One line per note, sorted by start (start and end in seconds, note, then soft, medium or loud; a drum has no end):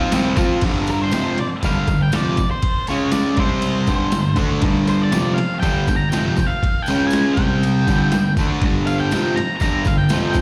0.00 0.12 F3 medium
0.00 0.12 C4 medium
0.00 0.13 F4 loud
0.12 0.37 C3 medium
0.12 0.37 G3 medium
0.12 0.37 C4 loud
0.12 snare loud
0.12 ride loud
0.12 tambourine loud
0.36 0.62 F3 medium
0.36 0.62 C4 loud
0.36 0.63 F4 loud
0.36 kick loud
0.36 ride medium
0.36 tambourine medium
0.61 1.12 G2 medium
0.61 1.13 D3 medium
0.61 1.13 G3 medium
0.61 kick loud
0.61 crash loud
0.61 ride medium
0.87 1.02 A#4 medium
0.87 ride medium
0.87 tambourine medium
1.02 1.40 C5 medium
1.11 1.37 F2 loud
1.11 1.38 C3 medium
1.11 1.38 F3 medium
1.11 snare loud
1.11 ride medium
1.11 tambourine medium
1.38 1.46 D5 medium
1.38 muted distorted electric guitar stroke medium
1.38 ride medium
1.63 1.87 G2 medium
1.63 1.87 D3 medium
1.63 1.88 G3 loud
1.63 2.02 F5 loud
1.63 kick medium
1.63 ride medium
1.63 tambourine medium
1.87 2.08 G2 medium
1.87 2.08 D3 medium
1.87 kick medium
1.87 ride medium
1.87 tambourine medium
2.02 2.14 G5 loud
2.12 2.37 F2 medium
2.12 2.38 C3 medium
2.12 2.38 F3 loud
2.12 2.49 D5 loud
2.12 snare loud
2.12 ride loud
2.12 tambourine medium
2.37 kick medium
2.37 ride medium
2.37 tambourine medium
2.51 2.86 C5 medium
2.62 kick loud
2.62 ride loud
2.87 3.38 C#3 medium
2.87 3.38 G#3 medium
2.87 3.39 C#4 loud
2.87 3.12 C#5 medium
2.87 ride medium
2.87 tambourine medium
3.12 3.39 D5 medium
3.12 snare loud
3.12 ride medium
3.12 tambourine medium
3.37 3.88 C3 medium
3.37 3.88 G3 medium
3.37 3.89 C4 medium
3.37 4.35 C5 medium
3.37 kick loud
3.37 ride medium
3.62 ride medium
3.62 tambourine medium
3.87 4.12 G2 medium
3.87 4.12 D3 medium
3.87 4.13 G3 medium
3.87 kick medium
3.87 ride medium
3.87 tambourine medium
4.12 4.33 G2 medium
4.12 4.33 D3 medium
4.12 snare loud
4.12 ride medium
4.12 tambourine medium
4.36 4.61 D3 medium
4.36 4.62 A3 loud
4.36 4.63 D4 loud
4.36 kick medium
4.36 ride medium
4.36 tambourine medium
4.62 5.12 G2 medium
4.62 5.12 D3 loud
4.62 5.12 G3 loud
4.62 kick loud
4.62 ride medium
4.88 5.02 C5 medium
4.88 ride medium
4.88 tambourine medium
5.02 5.39 D5 medium
5.12 5.37 F2 medium
5.12 5.37 C3 loud
5.12 5.38 F3 medium
5.12 snare loud
5.12 ride medium
5.12 tambourine medium
5.34 5.59 F5 medium
5.34 ride medium
5.38 muted distorted electric guitar stroke medium
5.60 5.87 G2 medium
5.60 5.87 D3 loud
5.60 5.88 G3 loud
5.60 5.96 G5 loud
5.60 kick medium
5.60 ride medium
5.60 tambourine medium
5.87 6.08 G2 medium
5.87 6.09 D3 medium
5.87 kick medium
5.87 ride medium
5.87 tambourine medium
5.96 6.09 A#5 loud
6.09 6.37 F2 medium
6.09 6.50 G5 loud
6.09 ride medium
6.09 tambourine medium
6.13 6.38 C3 medium
6.13 6.38 F3 medium
6.13 snare loud
6.36 kick medium
6.36 ride medium
6.36 tambourine medium
6.47 6.87 F5 medium
6.63 kick loud
6.63 ride medium
6.82 7.07 G5 medium
6.82 tambourine medium
6.88 7.37 C#3 medium
6.88 7.38 G#3 loud
6.88 7.38 C#4 loud
6.88 ride medium
7.07 7.33 G#5 medium
7.07 tambourine medium
7.13 snare loud
7.13 ride medium
7.34 7.87 C3 medium
7.34 8.31 G5 medium
7.34 kick loud
7.34 ride medium
7.34 tambourine soft
7.38 7.87 G3 medium
7.38 7.87 C4 medium
7.63 ride medium
7.63 tambourine medium
7.87 8.12 G2 medium
7.87 8.12 D3 medium
7.87 8.13 G3 medium
7.87 kick medium
7.87 ride medium
7.87 tambourine medium
8.12 8.34 G2 medium
8.12 8.34 D3 medium
8.12 snare loud
8.12 ride medium
8.12 tambourine medium
8.37 8.62 D3 loud
8.37 8.62 A3 loud
8.37 8.63 D4 loud
8.37 kick medium
8.37 ride medium
8.37 tambourine medium
8.62 9.12 G2 medium
8.62 9.12 D3 medium
8.62 kick loud
8.62 ride medium
8.66 9.13 G3 loud
8.87 9.00 F5 medium
8.87 ride medium
8.87 tambourine medium
9.00 9.34 G5 medium
9.11 9.37 F2 medium
9.11 9.37 C3 medium
9.11 snare loud
9.11 ride medium
9.11 tambourine medium
9.16 9.38 F3 loud
9.36 9.59 A#5 loud
9.36 muted distorted electric guitar stroke medium
9.36 ride medium
9.60 9.86 G2 medium
9.60 9.87 D3 medium
9.60 9.86 A#5 medium
9.60 kick medium
9.60 ride medium
9.60 tambourine medium
9.64 9.87 G3 loud
9.85 10.07 G2 medium
9.85 10.07 D3 medium
9.85 9.95 F5 medium
9.85 kick medium
9.85 ride medium
9.85 tambourine medium
9.98 10.30 G5 medium
10.09 10.35 F2 medium
10.09 10.35 C3 medium
10.09 10.36 F3 medium
10.09 snare loud
10.09 ride medium
10.09 tambourine medium
10.31 10.41 G5 medium
10.31 kick medium
10.31 tambourine medium
10.35 ride medium